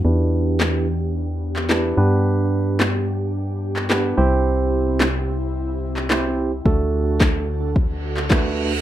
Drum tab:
CP |----x------xx---|----x------xx---|----x------xx---|----x------xx---|
SD |----o-------o---|----o-------o---|----o-------o---|----o-------o---|
BD |----------------|----------------|----------------|o---o---o---o---|